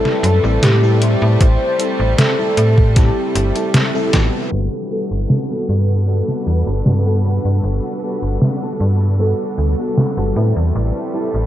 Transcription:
Already playing: C3 G3 A3 C4 E4 A4
0.05 snare
0.23 F#2, closed hi-hat
0.43 A1 G3 C4 E4 A4
0.63 A2 G4, snare, closed hi-hat
0.82 G3 C4 E4 A4
1.01 G3 C4 E4 C5, closed hi-hat
1.22 A2
1.41 A1 C5, kick, closed hi-hat
1.78 G3 C4 E4 A4, closed hi-hat
2.00 A1
2.18 A4, snare, closed hi-hat
2.38 G3 C4 E4 A4
2.57 A2, closed hi-hat
2.78 kick
2.96 G3 C4 E4 G4 A4, kick, snare, closed hi-hat
3.35 G1, closed hi-hat
3.55 G3 C4 E4 A4, closed hi-hat
3.74 snare, closed hi-hat
3.93 G3 C4 E4 A4
4.12 A1 G3 B3 F#4 B4, kick, snare, closed hi-hat
4.52 G1 G3 D4 F#4 A4 B4
4.91 G3 B3 F#4 A4
5.11 G1
5.30 snare
5.49 G3 B3 F#4 A4
5.69 G2
6.07 G3 B3 F#4 A4
6.28 snare
6.47 E2
6.66 G1 G3 B3 F#4 A4
6.86 G2, snare
7.05 G3 B3 F#4 A4
7.24 G3 B3 F#4 B4
7.45 G2
7.63 G1
8.02 G3 B3 F#4 A4
8.22 G1
8.42 snare
8.61 G3 B3 F#4 A4
8.80 G2
9.19 G3 B3 F#4 A4
9.58 D2
9.78 G3 B3 F#4 A4
9.97 snare
10.17 G1 G3 B3 F#4 A4
10.35 A2 C3 G3 A3 C4 E4 B4
10.56 E2
10.75 A1
11.13 G3 C4 E4 A4
11.34 A1

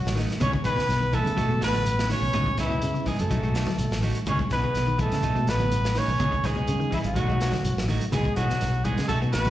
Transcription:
Already playing: F#3 F#4
0.05 A1, snare, shekere
0.16 D#3 F#3 A3 D#4, snare, open hi-hat, shekere
0.29 snare, closed hi-hat, high conga, shekere
0.40 C#2 B2 E3 B3 C#4 D#4 G#4 C#5, kick, closed hi-hat, low conga, shekere
0.52 C#3, kick, shekere
0.64 B1 E3 B3 D#4 G#4 B4, kick, closed hi-hat, high conga, shekere
0.76 B2 B3 D#4 G#4, snare, shekere
0.88 B1, snare, closed hi-hat, high conga, shekere
1.00 D#3, shekere
1.12 E3 A3 B3 D#4 G#4 A4, kick, closed hi-hat, high conga, shekere
1.25 C#3, closed hi-hat, high conga, low conga, shekere
1.36 B1 F#3 A3 D#4 F#4, kick, closed hi-hat, shekere
1.49 B2 G#3, shekere
1.60 A1 F#3 A3 D#4 F#4 B4, snare, closed hi-hat, shekere
1.65 B3
1.73 F#3, snare, closed hi-hat, high conga, low conga, shekere
1.86 closed hi-hat, high conga, shekere
1.99 snare, shekere
2.09 D#3 F#3 A3 F#4 C#5, muted clean electric guitar stroke, snare, open hi-hat, shekere
2.13 C#4
2.22 B1, shekere
2.33 C#2 B2 E3 B3 D#4 G#4, kick, closed hi-hat, low conga, shekere
2.46 kick, high conga, shekere
2.57 C#2 E3 B3 D#4 E4 G#4, kick, snare, closed hi-hat, high conga, shekere
2.62 E3
2.70 B2 B3 D#4 G#4, shekere
2.82 C#3, closed hi-hat, high conga, shekere
2.94 C#3, shekere
3.06 E3 G#3 B3 D#4 G#4, kick, open hi-hat, high conga, shekere
3.19 F#2 A3 A4, closed hi-hat, shekere
3.30 B1 F#3 A3 D#4, muted clean electric guitar stroke, kick, closed hi-hat, shekere
3.42 B1 G#3 A3 D#4 F#4, shekere
3.54 F#3 A3 D#4 F#4, snare, closed hi-hat, shekere
3.67 F#3, snare, closed hi-hat, high conga, low conga, shekere
3.78 B1, closed hi-hat, high conga, shekere
3.91 A1, snare, shekere
4.02 D#3 F#3 A3 D#4 F#4, open hi-hat, shekere
4.15 closed hi-hat, high conga, shekere
4.26 C#2 B2 E3 B3 C#4 D#4 G#4 C#5, kick, closed hi-hat, low conga, shekere
4.39 C#3, kick, high conga, shekere
4.50 B1 E3 B3 D#4 G#4 B4, kick, snare, closed hi-hat, high conga, shekere
4.63 B2 B3 D#4 G#4, shekere
4.75 B1, snare, closed hi-hat, shekere
4.87 D#3, shekere
4.98 E3 B3 D#4 G#4 A4, kick, closed hi-hat, high conga, shekere
5.03 A3
5.12 C#3, snare, closed hi-hat, low conga, shekere
5.23 B1 F#3 A3 D#4, muted clean electric guitar stroke, kick, closed hi-hat, shekere
5.35 B2 G#3, shekere
5.47 A1 F#3 A3 D#4 B4, snare, closed hi-hat, shekere
5.51 B3
5.60 F#3, closed hi-hat, high conga, low conga, shekere
5.72 closed hi-hat, high conga, shekere
5.84 snare, shekere
5.95 D#3 F#3 A3 D#4 C#5, snare, open hi-hat, shekere
6.00 C#4
6.08 B1, shekere
6.20 C#2 B2 E3 B3 D#4 G#4, kick, closed hi-hat, low conga, shekere
6.31 C#3, kick, shekere
6.44 C#2 E3 G#3 B3 D#4 G#4, kick, snare, closed hi-hat, high conga, shekere
6.56 B2 B3 D#4 G#4, shekere
6.67 C#3, closed hi-hat, high conga, shekere
6.80 D#3, shekere
6.91 E3 B3 D#4 E4 G#4, kick, open hi-hat, high conga, shekere
6.97 E3
7.04 G#1 F#4, closed hi-hat, high conga, shekere
7.09 F#3
7.16 B1 F#3 A3 D#4 F#4, kick, closed hi-hat, shekere
7.28 B1 G#3 A3 D#4 F#4, shekere
7.41 F#3 A3 D#4 F#4, snare, closed hi-hat, shekere
7.52 F#3, snare, closed hi-hat, high conga, low conga, shekere
7.65 B1, closed hi-hat, high conga, shekere
7.77 A1, snare, shekere
7.88 D#3 F#3 A3 D#4 F#4, open hi-hat, shekere
8.01 closed hi-hat, high conga, shekere
8.12 C#2 B2 E3 G#3 B3 D#4 G#4, kick, snare, closed hi-hat, low conga, shekere
8.25 kick, high conga, shekere
8.36 B1 E3 F#3 B3 D#4 F#4 G#4, kick, closed hi-hat, high conga, shekere
8.49 B2 B3 D#4 G#4, snare, shekere
8.61 B1, snare, closed hi-hat, high conga, shekere
8.73 shekere
8.84 E3 G#3 B3 D#4 G#4, kick, closed hi-hat, high conga, shekere
8.97 C#3, snare, closed hi-hat, shekere
9.08 B1 F#3 A3 D#4 F#4 A4, kick, closed hi-hat, shekere
9.21 B2 A3 B3 D#4 F#4, shekere
9.32 A1 F#3 B3 D#4 F#4 B4, snare, closed hi-hat, shekere
9.45 F#3, snare, closed hi-hat, high conga, low conga, shekere

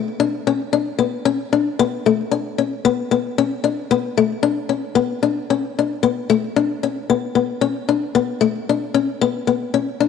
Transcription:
0.20 D4
0.47 C#4
0.73 D4
0.99 B3
1.25 C#4
1.53 D4
1.79 B3
2.06 A3
2.31 D4
2.58 C#4
2.85 B3
3.11 B3
3.38 C#4
3.64 D4
3.91 B3
4.17 A3
4.43 D4
4.69 C#4
4.95 B3
5.23 D4
5.50 C#4
5.79 D4
6.03 B3
6.30 A3
6.56 D4
6.83 C#4
7.10 B3
7.35 B3
7.61 C#4
7.89 D4
8.15 B3
8.41 A3
8.69 D4
8.94 C#4
9.21 B3
9.47 B3
9.74 C#4
10.00 D4

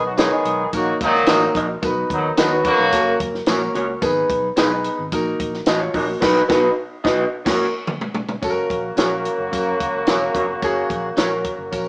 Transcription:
Already playing: B1
0.05 F#3 D#4 F#4
0.17 D#3 G#3 B3 D#4 G#4 B4 C#5 D#5, snare, closed hi-hat, tambourine
0.45 B1, closed hi-hat
0.72 A#1 D#3 F#3 A#3 D#4 F#4 A#4, kick, closed hi-hat, tambourine
1.01 C#2 A#2 D#3 F#3 D#4, kick, closed hi-hat
1.15 snare
1.26 A1 A#3 D#4 F#4 A#4 D#5, snare, closed hi-hat, tambourine
1.55 A#1 D#4 F#4 A#4 D#5, kick, closed hi-hat
1.82 B1 B3 D#4 F#4 B4, kick, closed hi-hat, tambourine
2.10 D#2 B2 D#3 F#3 D#4, kick, closed hi-hat
2.37 D#2 D#3 F#3 B3 D#4 F#4 B4 D#5, snare, closed hi-hat, tambourine
2.64 C#3 F#3 A#3 F#4, kick, closed hi-hat
2.79 B1
2.92 F#1 A#3 C#4 F#4 A4, kick, closed hi-hat, tambourine
3.00 A#4
3.20 F#1, kick, closed hi-hat
3.34 snare
3.46 A#1 A#3 C#4 F#4 A#4 C#5, snare, closed hi-hat, tambourine
3.75 C#2 C#4 F#4 A#4 C#5, closed hi-hat
4.02 G#1 B3 D#4 G#4 B4, kick, closed hi-hat, tambourine
4.29 B1, kick, closed hi-hat
4.56 B1 B3 D#4 G#4 B4 D#5, snare, closed hi-hat, tambourine
4.84 closed hi-hat
4.99 G#1
5.12 A#1 A#3 D#4 F#4 A#4, kick, closed hi-hat, tambourine
5.40 A#1, kick, closed hi-hat
5.54 snare
5.66 A1 D#4 F#4 A#4 D#5, snare, closed hi-hat, tambourine
5.80 F4 C#5
5.94 A#1 C#4 D#4 F#4 A#4 D#5, kick, open hi-hat
6.07 A#3 F#4
6.20 B1 B3 D#4 F#4 B4 D#5, kick, snare, crash
6.48 B1 B3 D#4 F#4 B4 D#5, kick, snare
7.04 B1 D#4 F#4 B4 D#5, kick, snare
7.45 F#1 A#3 C#4 F#4 A#4 C#5, kick, snare, crash
7.53 A#4
7.87 mid tom
8.01 floor tom
8.14 floor tom
8.29 floor tom
8.42 F#1 C#3 F#3 A#3 C#4 F#4 A4, kick, closed hi-hat, tambourine
8.50 A#4
8.70 A#1, kick, closed hi-hat
8.96 A#1 C#4 F#4 G#4 A#4 C#5, snare, closed hi-hat, tambourine
9.04 A#4
9.25 closed hi-hat
9.38 F#1
9.51 F#2 C#4 F#4 A#4, kick, closed hi-hat, tambourine
9.80 C#2, kick, closed hi-hat
10.07 E1 C#4 F#4 A#4 C#5, snare, closed hi-hat, tambourine
10.35 F1 C#4 F#4 A#4 C#5, kick, closed hi-hat
10.62 F#1 C#4 F#4 G#4, kick, closed hi-hat, tambourine
10.90 A#1, kick, closed hi-hat
11.17 A#1 C#4 F#4 A#4 C#5, snare, closed hi-hat, tambourine
11.44 kick, closed hi-hat
11.58 F#1
11.71 A#1 C#4 F#4 A#4, kick, closed hi-hat, tambourine

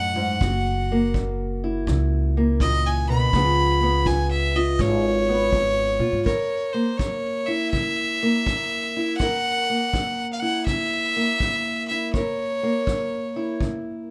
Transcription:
Already playing: F#2 A2 D#4 A4 F#5
0.16 G#2
0.41 F#1 F#2 F#4, kick
0.92 A#3
1.14 F#3, kick
1.64 E4
1.87 C#2 C#3, kick
2.37 A#3
2.60 A#2 D#5, kick
2.86 G#5
3.09 B2 B5
3.33 C#2 C#3 F3 B3 F4 G#4, kick
3.83 B3
4.06 F3 G#5, kick
4.31 E5
4.56 F4 D#5
4.79 G#1 G#2 C#5, kick
5.29 B3
5.53 F3, kick
5.99 A#2 F4
6.12 G#2
6.25 F#2 A#4 C#5, kick
6.73 A#3 C5
6.97 F#3 C#5, kick
7.46 E4 E5
7.71 C#3 E5, kick
8.23 A#3
8.46 F#3, kick
8.97 E4
9.18 F#2 F#5, kick
9.22 A#4
9.70 A#3
9.93 F#3, kick
10.33 F5
10.40 E4 F#5
10.66 C#3 E5, kick
11.16 A#3
11.40 F#3, kick
11.88 E4 E5
12.13 F#2 A#4 C#5, kick
12.63 A#3
12.87 F#3, kick
13.36 E4
13.60 C#3, kick

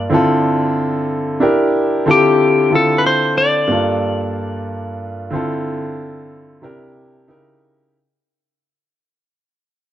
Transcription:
Already playing: G2 A#3 D4 F4 D5 A5
0.10 D3 C4 E4 F4
0.14 A4
1.40 D4 E4 G4 A#4
2.06 D3 C4 E4 F4 A4
2.11 G4
2.70 D3 C4 E4 F4 A4
2.75 A4
2.98 B4
3.07 C5
3.38 D5
3.67 G2 A#3 D4 F4
3.72 A4
5.31 D3 C4 E4 F4
5.35 A4
6.62 C3 D4 E4 G4 A#4
7.28 C#3 D#4 E4 G4 A#4

